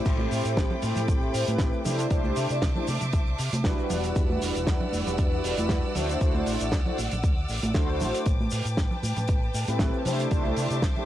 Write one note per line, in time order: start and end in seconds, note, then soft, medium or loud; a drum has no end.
0.00 1.44 A3 medium
0.00 1.44 C4 medium
0.00 1.44 E4 medium
0.00 1.45 G4 medium
0.00 1.45 C5 loud
0.00 1.82 D6 medium
0.05 0.26 A1 medium
0.05 1.83 A4 medium
0.05 1.83 G5 medium
0.05 1.83 B5 medium
0.05 kick loud
0.05 closed hi-hat medium
0.05 crash medium
0.05 cabasa medium
0.05 shaker medium
0.19 high conga medium
0.19 cabasa soft
0.31 0.42 A2 medium
0.31 open hi-hat loud
0.31 shaker medium
0.45 0.59 A2 medium
0.45 closed hi-hat medium
0.45 cabasa medium
0.45 shaker medium
0.57 0.67 A1 medium
0.57 kick loud
0.57 snare loud
0.57 closed hi-hat medium
0.57 cabasa medium
0.57 shaker medium
0.70 low conga medium
0.70 cabasa soft
0.82 0.93 A2 medium
0.82 open hi-hat loud
0.82 high conga medium
0.82 shaker medium
0.96 1.05 A2 medium
0.96 closed hi-hat medium
0.96 low conga medium
0.96 cabasa medium
0.96 shaker medium
1.08 1.28 A1 loud
1.08 kick loud
1.08 closed hi-hat medium
1.08 cabasa medium
1.08 shaker medium
1.22 cabasa soft
1.34 1.44 A2 medium
1.34 open hi-hat loud
1.34 shaker medium
1.47 1.57 A2 medium
1.47 1.82 A3 medium
1.47 1.82 C4 medium
1.47 1.82 E4 medium
1.47 1.83 G4 medium
1.47 1.83 B4 medium
1.47 closed hi-hat medium
1.47 high conga medium
1.47 cabasa medium
1.47 shaker medium
1.59 1.70 A1 medium
1.59 kick loud
1.59 snare loud
1.59 closed hi-hat medium
1.59 cabasa medium
1.59 shaker soft
1.73 cabasa soft
1.85 2.05 C3 loud
1.85 2.08 A3 medium
1.85 2.08 D4 medium
1.85 2.08 E4 medium
1.85 2.08 G4 medium
1.85 2.08 C5 loud
1.85 3.89 C5 medium
1.85 3.89 E5 medium
1.85 3.89 A5 medium
1.85 3.89 D6 medium
1.85 open hi-hat loud
1.85 low conga loud
1.85 shaker medium
1.99 closed hi-hat medium
1.99 cabasa medium
1.99 shaker medium
2.10 2.31 C2 loud
2.10 2.47 A3 medium
2.10 2.47 D4 medium
2.10 2.47 E4 medium
2.10 2.47 G4 medium
2.10 2.47 C5 loud
2.10 kick loud
2.10 closed hi-hat medium
2.10 cabasa medium
2.10 shaker medium
2.24 high conga medium
2.24 cabasa soft
2.36 2.47 C3 medium
2.36 open hi-hat loud
2.36 shaker medium
2.49 2.64 C3 loud
2.49 2.57 A3 medium
2.49 2.57 D4 medium
2.49 2.57 E4 medium
2.49 2.57 G4 medium
2.49 2.57 D5 medium
2.49 closed hi-hat medium
2.49 cabasa medium
2.49 shaker medium
2.62 2.72 C2 medium
2.62 kick loud
2.62 snare loud
2.62 closed hi-hat medium
2.62 cabasa medium
2.62 shaker medium
2.75 2.87 A3 medium
2.75 2.87 D4 medium
2.75 2.87 E4 medium
2.75 2.87 G4 medium
2.75 2.87 C5 medium
2.75 low conga medium
2.75 cabasa soft
2.87 2.98 C3 medium
2.87 open hi-hat loud
2.87 high conga medium
2.87 shaker medium
3.01 3.11 C3 medium
3.01 closed hi-hat medium
3.01 low conga medium
3.01 cabasa medium
3.01 shaker medium
3.13 3.33 C2 medium
3.13 kick loud
3.13 closed hi-hat medium
3.13 cabasa medium
3.13 shaker medium
3.27 cabasa soft
3.38 3.50 C3 loud
3.38 open hi-hat loud
3.38 shaker medium
3.53 3.62 C3 medium
3.53 closed hi-hat medium
3.53 high conga loud
3.53 cabasa medium
3.53 shaker medium
3.64 3.75 C2 medium
3.64 5.54 G3 medium
3.64 5.54 D4 medium
3.64 5.55 E4 medium
3.64 5.55 F#4 medium
3.64 5.55 B4 loud
3.64 kick loud
3.64 snare loud
3.64 closed hi-hat medium
3.64 cabasa medium
3.64 shaker medium
3.78 cabasa soft
3.90 4.10 E1 loud
3.90 8.22 D5 medium
3.90 8.22 F#5 medium
3.90 8.23 E6 medium
3.90 open hi-hat medium
3.90 low conga loud
3.90 shaker medium
4.04 closed hi-hat medium
4.04 cabasa medium
4.04 shaker medium
4.16 4.36 E2 loud
4.16 kick loud
4.16 closed hi-hat medium
4.16 cabasa medium
4.16 shaker medium
4.30 high conga medium
4.30 cabasa soft
4.42 4.52 E1 medium
4.42 open hi-hat loud
4.42 shaker medium
4.55 4.69 E1 loud
4.55 closed hi-hat medium
4.55 cabasa medium
4.55 shaker medium
4.67 4.78 E2 loud
4.67 kick loud
4.67 snare loud
4.67 closed hi-hat medium
4.67 cabasa medium
4.67 shaker medium
4.80 low conga medium
4.80 cabasa soft
4.93 5.03 E1 medium
4.93 open hi-hat loud
4.93 high conga medium
4.93 shaker medium
5.07 5.16 E1 medium
5.07 closed hi-hat medium
5.07 low conga medium
5.07 cabasa medium
5.07 shaker medium
5.18 5.38 E2 loud
5.18 kick loud
5.18 closed hi-hat medium
5.18 cabasa medium
5.18 shaker soft
5.32 cabasa soft
5.44 5.54 E1 medium
5.44 open hi-hat loud
5.44 shaker medium
5.57 5.67 E1 medium
5.57 5.93 G3 medium
5.57 5.93 D4 medium
5.57 5.93 E4 medium
5.57 5.93 F#4 medium
5.57 5.93 B4 medium
5.57 closed hi-hat medium
5.57 high conga loud
5.57 cabasa medium
5.57 shaker medium
5.69 5.80 E2 medium
5.69 kick loud
5.69 snare loud
5.69 closed hi-hat medium
5.69 cabasa medium
5.69 shaker medium
5.83 cabasa soft
5.95 6.15 D2 loud
5.95 6.18 A3 medium
5.95 6.18 D4 medium
5.95 6.18 E4 medium
5.95 6.18 F#4 medium
5.95 6.19 C5 medium
5.95 10.02 D6 medium
5.95 open hi-hat loud
5.95 low conga loud
5.95 shaker medium
6.09 closed hi-hat medium
6.09 cabasa medium
6.09 shaker medium
6.21 6.41 D2 loud
6.21 6.57 A3 medium
6.21 6.57 D4 medium
6.21 6.57 E4 medium
6.21 6.57 F#4 medium
6.21 6.57 C5 loud
6.21 kick loud
6.21 closed hi-hat medium
6.21 cabasa medium
6.21 shaker soft
6.35 high conga loud
6.35 cabasa soft
6.46 6.57 A1 medium
6.46 open hi-hat loud
6.46 shaker medium
6.60 6.72 A1 medium
6.60 6.67 A3 medium
6.60 6.67 D4 medium
6.60 6.67 E4 medium
6.60 6.68 F#4 medium
6.60 6.68 D5 medium
6.60 closed hi-hat medium
6.60 cabasa medium
6.60 shaker medium
6.72 6.83 D2 medium
6.72 kick loud
6.72 snare loud
6.72 closed hi-hat medium
6.72 cabasa medium
6.72 shaker medium
6.85 6.97 A3 medium
6.85 6.97 D4 medium
6.85 6.97 E4 medium
6.85 6.97 F#4 medium
6.85 6.97 C5 medium
6.85 low conga medium
6.85 cabasa soft
6.98 7.08 A1 medium
6.98 open hi-hat medium
6.98 high conga medium
6.98 shaker medium
7.11 7.21 A1 medium
7.11 closed hi-hat medium
7.11 low conga medium
7.11 cabasa medium
7.11 shaker medium
7.23 7.43 D2 loud
7.23 kick loud
7.23 closed hi-hat medium
7.23 cabasa medium
7.23 shaker medium
7.38 cabasa soft
7.49 7.60 A1 loud
7.49 open hi-hat loud
7.49 shaker medium
7.63 7.72 A1 medium
7.63 closed hi-hat medium
7.63 high conga loud
7.63 cabasa medium
7.63 shaker medium
7.74 8.02 D2 loud
7.74 8.25 A3 medium
7.74 8.25 D4 medium
7.74 8.25 E4 medium
7.74 8.25 F#4 medium
7.74 8.25 C5 loud
7.74 kick loud
7.74 snare loud
7.74 closed hi-hat medium
7.74 cabasa medium
7.74 shaker medium
7.89 cabasa soft
8.00 8.11 A1 loud
8.00 open hi-hat medium
8.00 low conga medium
8.00 shaker medium
8.14 closed hi-hat medium
8.14 cabasa medium
8.14 shaker medium
8.26 8.46 A1 loud
8.26 10.04 B4 medium
8.26 10.04 G5 medium
8.26 11.05 A5 medium
8.26 kick loud
8.26 closed hi-hat medium
8.26 cabasa medium
8.26 shaker medium
8.40 high conga medium
8.40 cabasa soft
8.51 8.62 A2 medium
8.51 open hi-hat loud
8.51 shaker medium
8.65 8.79 A2 loud
8.65 closed hi-hat medium
8.65 cabasa medium
8.65 shaker medium
8.77 8.88 A1 medium
8.77 kick loud
8.77 snare loud
8.77 closed hi-hat medium
8.77 cabasa medium
8.77 shaker medium
8.91 low conga medium
8.91 cabasa soft
9.03 9.13 A2 medium
9.03 open hi-hat medium
9.03 high conga medium
9.03 shaker medium
9.16 9.26 A2 medium
9.16 closed hi-hat medium
9.16 low conga medium
9.16 cabasa medium
9.16 shaker medium
9.28 9.49 A1 loud
9.28 kick loud
9.28 closed hi-hat medium
9.28 cabasa medium
9.28 shaker medium
9.43 cabasa soft
9.54 9.65 A2 medium
9.54 open hi-hat loud
9.54 shaker medium
9.67 9.77 A2 medium
9.67 10.03 A3 medium
9.67 10.03 C4 medium
9.67 10.03 E4 medium
9.67 10.03 G4 medium
9.67 10.03 B4 medium
9.67 closed hi-hat medium
9.67 high conga loud
9.67 cabasa medium
9.67 shaker medium
9.79 9.90 A1 medium
9.79 kick loud
9.79 snare loud
9.79 closed hi-hat medium
9.79 cabasa medium
9.79 shaker medium
9.94 cabasa soft
10.05 10.25 C3 loud
10.05 10.28 A3 medium
10.05 10.28 D4 medium
10.05 10.28 E4 medium
10.05 10.29 G4 medium
10.05 11.05 C5 medium
10.05 10.29 C5 loud
10.05 11.05 E5 medium
10.05 11.05 D6 medium
10.05 open hi-hat loud
10.05 low conga medium
10.05 shaker loud
10.19 closed hi-hat medium
10.19 cabasa medium
10.19 shaker medium
10.31 10.51 C2 loud
10.31 10.67 A3 medium
10.31 10.67 D4 medium
10.31 10.67 E4 medium
10.31 10.68 G4 medium
10.31 10.68 C5 loud
10.31 kick loud
10.31 closed hi-hat medium
10.31 cabasa medium
10.31 shaker medium
10.45 high conga medium
10.45 cabasa soft
10.57 10.67 C3 medium
10.57 open hi-hat loud
10.57 shaker medium
10.70 10.84 C3 loud
10.70 10.77 A3 medium
10.70 10.78 D4 medium
10.70 10.78 E4 medium
10.70 10.78 G4 medium
10.70 10.78 D5 medium
10.70 closed hi-hat medium
10.70 cabasa medium
10.70 shaker medium
10.82 10.93 C2 medium
10.82 kick loud
10.82 snare loud
10.82 closed hi-hat medium
10.82 cabasa medium
10.82 shaker medium
10.96 11.05 A3 medium
10.96 11.05 D4 medium
10.96 11.05 E4 medium
10.96 11.05 G4 medium
10.96 11.05 C5 medium
10.96 low conga medium
10.96 cabasa soft